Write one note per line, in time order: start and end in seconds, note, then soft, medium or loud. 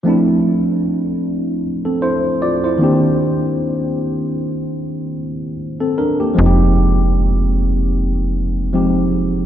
0.03 2.76 F3 medium
0.03 2.77 A3 medium
0.03 1.60 C4 medium
0.03 1.60 D4 medium
0.09 1.61 E4 medium
1.85 2.01 C4 soft
1.85 2.01 A4 soft
2.02 2.40 E4 soft
2.02 2.39 C5 medium
2.42 2.63 F4 soft
2.42 2.63 D5 medium
2.64 3.02 E4 soft
2.64 3.01 C5 soft
2.78 5.51 D#3 medium
2.78 5.13 A#3 soft
2.78 5.13 C4 soft
2.82 5.14 D4 soft
2.82 5.15 G4 medium
5.80 5.96 C4 soft
5.80 5.96 A4 medium
5.98 6.19 D4 soft
5.98 6.18 A#4 medium
6.20 6.57 A#3 soft
6.20 6.45 G4 medium
6.34 8.68 F3 medium
6.34 8.68 G#3 medium
6.34 8.69 C4 medium
6.39 9.46 F1 medium
6.39 8.70 D#4 medium
6.39 6.45 F4 soft
6.46 8.74 G4 medium
8.73 9.46 F3 soft
8.73 9.46 G#3 soft
8.73 9.46 C4 soft
8.73 9.46 D#4 soft
8.73 9.46 G4 soft